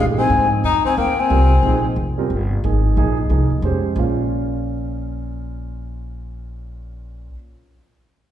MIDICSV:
0, 0, Header, 1, 6, 480
1, 0, Start_track
1, 0, Tempo, 333148
1, 1400, Time_signature, 3, 2, 24, 8
1, 11977, End_track
2, 0, Start_track
2, 0, Title_t, "Flute"
2, 0, Program_c, 0, 73
2, 276, Note_on_c, 0, 80, 92
2, 714, Note_off_c, 0, 80, 0
2, 939, Note_on_c, 0, 82, 79
2, 1207, Note_off_c, 0, 82, 0
2, 1245, Note_on_c, 0, 80, 75
2, 1402, Note_off_c, 0, 80, 0
2, 1433, Note_on_c, 0, 79, 89
2, 1730, Note_on_c, 0, 80, 85
2, 1752, Note_off_c, 0, 79, 0
2, 2672, Note_off_c, 0, 80, 0
2, 11977, End_track
3, 0, Start_track
3, 0, Title_t, "Grand piano"
3, 0, Program_c, 1, 0
3, 0, Note_on_c, 1, 52, 58
3, 0, Note_on_c, 1, 57, 51
3, 0, Note_on_c, 1, 62, 53
3, 0, Note_on_c, 1, 67, 62
3, 233, Note_off_c, 1, 52, 0
3, 233, Note_off_c, 1, 57, 0
3, 239, Note_off_c, 1, 62, 0
3, 239, Note_off_c, 1, 67, 0
3, 249, Note_on_c, 1, 53, 59
3, 258, Note_on_c, 1, 58, 46
3, 264, Note_on_c, 1, 68, 63
3, 268, Note_on_c, 1, 63, 51
3, 1285, Note_off_c, 1, 53, 0
3, 1290, Note_off_c, 1, 58, 0
3, 1293, Note_off_c, 1, 68, 0
3, 1295, Note_off_c, 1, 63, 0
3, 1884, Note_on_c, 1, 55, 57
3, 1888, Note_on_c, 1, 60, 56
3, 1892, Note_on_c, 1, 70, 69
3, 1893, Note_on_c, 1, 65, 51
3, 2149, Note_off_c, 1, 55, 0
3, 2151, Note_off_c, 1, 60, 0
3, 2153, Note_off_c, 1, 65, 0
3, 2153, Note_off_c, 1, 70, 0
3, 2366, Note_on_c, 1, 53, 58
3, 2374, Note_on_c, 1, 58, 54
3, 2376, Note_on_c, 1, 63, 55
3, 2380, Note_on_c, 1, 68, 65
3, 2630, Note_off_c, 1, 53, 0
3, 2634, Note_off_c, 1, 58, 0
3, 2635, Note_off_c, 1, 63, 0
3, 2637, Note_off_c, 1, 68, 0
3, 3138, Note_on_c, 1, 55, 67
3, 3150, Note_on_c, 1, 65, 61
3, 3152, Note_on_c, 1, 60, 59
3, 3152, Note_on_c, 1, 70, 70
3, 3301, Note_off_c, 1, 55, 0
3, 3307, Note_off_c, 1, 65, 0
3, 3308, Note_off_c, 1, 60, 0
3, 3308, Note_off_c, 1, 70, 0
3, 3803, Note_on_c, 1, 53, 52
3, 3811, Note_on_c, 1, 58, 53
3, 3812, Note_on_c, 1, 63, 52
3, 3813, Note_on_c, 1, 68, 64
3, 4258, Note_off_c, 1, 53, 0
3, 4265, Note_off_c, 1, 58, 0
3, 4267, Note_off_c, 1, 63, 0
3, 4268, Note_off_c, 1, 68, 0
3, 4279, Note_on_c, 1, 53, 65
3, 4287, Note_on_c, 1, 58, 60
3, 4288, Note_on_c, 1, 63, 64
3, 4290, Note_on_c, 1, 68, 77
3, 4546, Note_off_c, 1, 53, 0
3, 4550, Note_off_c, 1, 58, 0
3, 4551, Note_off_c, 1, 63, 0
3, 4551, Note_off_c, 1, 68, 0
3, 4754, Note_on_c, 1, 53, 55
3, 4759, Note_on_c, 1, 58, 53
3, 4765, Note_on_c, 1, 63, 51
3, 4769, Note_on_c, 1, 68, 61
3, 5023, Note_off_c, 1, 53, 0
3, 5026, Note_off_c, 1, 58, 0
3, 5029, Note_off_c, 1, 63, 0
3, 5031, Note_off_c, 1, 68, 0
3, 5247, Note_on_c, 1, 56, 64
3, 5249, Note_on_c, 1, 61, 53
3, 5251, Note_on_c, 1, 67, 55
3, 5259, Note_on_c, 1, 72, 64
3, 5710, Note_on_c, 1, 46, 66
3, 5716, Note_off_c, 1, 61, 0
3, 5721, Note_on_c, 1, 58, 55
3, 5722, Note_off_c, 1, 56, 0
3, 5724, Note_off_c, 1, 67, 0
3, 5728, Note_off_c, 1, 72, 0
3, 5738, Note_on_c, 1, 61, 55
3, 5743, Note_on_c, 1, 65, 59
3, 5750, Note_on_c, 1, 77, 65
3, 10530, Note_off_c, 1, 46, 0
3, 10541, Note_off_c, 1, 58, 0
3, 10558, Note_off_c, 1, 61, 0
3, 10563, Note_off_c, 1, 65, 0
3, 10570, Note_off_c, 1, 77, 0
3, 11977, End_track
4, 0, Start_track
4, 0, Title_t, "Tenor saxophone"
4, 0, Program_c, 2, 66
4, 261, Note_on_c, 2, 60, 73
4, 706, Note_off_c, 2, 60, 0
4, 934, Note_on_c, 2, 63, 75
4, 1204, Note_off_c, 2, 63, 0
4, 1228, Note_on_c, 2, 60, 70
4, 1393, Note_off_c, 2, 60, 0
4, 1407, Note_on_c, 2, 58, 68
4, 1723, Note_on_c, 2, 60, 77
4, 1744, Note_off_c, 2, 58, 0
4, 2669, Note_off_c, 2, 60, 0
4, 11977, End_track
5, 0, Start_track
5, 0, Title_t, "Upright bass"
5, 0, Program_c, 3, 32
5, 0, Note_on_c, 3, 46, 82
5, 422, Note_off_c, 3, 46, 0
5, 431, Note_on_c, 3, 44, 85
5, 901, Note_off_c, 3, 44, 0
5, 915, Note_on_c, 3, 41, 76
5, 1194, Note_off_c, 3, 41, 0
5, 1403, Note_on_c, 3, 39, 79
5, 1866, Note_off_c, 3, 39, 0
5, 1877, Note_on_c, 3, 36, 85
5, 2338, Note_off_c, 3, 36, 0
5, 2346, Note_on_c, 3, 34, 81
5, 2817, Note_off_c, 3, 34, 0
5, 2826, Note_on_c, 3, 29, 72
5, 3297, Note_off_c, 3, 29, 0
5, 3313, Note_on_c, 3, 31, 78
5, 3781, Note_off_c, 3, 31, 0
5, 3799, Note_on_c, 3, 32, 83
5, 4264, Note_off_c, 3, 32, 0
5, 4277, Note_on_c, 3, 34, 81
5, 4740, Note_off_c, 3, 34, 0
5, 4748, Note_on_c, 3, 36, 78
5, 5029, Note_off_c, 3, 36, 0
5, 5220, Note_on_c, 3, 41, 81
5, 5694, Note_off_c, 3, 41, 0
5, 5700, Note_on_c, 3, 34, 81
5, 10463, Note_off_c, 3, 34, 0
5, 11977, End_track
6, 0, Start_track
6, 0, Title_t, "Muted upright bass strokes"
6, 1220, Note_on_c, 9, 29, 35
6, 1364, Note_off_c, 9, 29, 0
6, 5049, Note_on_c, 9, 29, 38
6, 5193, Note_off_c, 9, 29, 0
6, 11977, End_track
0, 0, End_of_file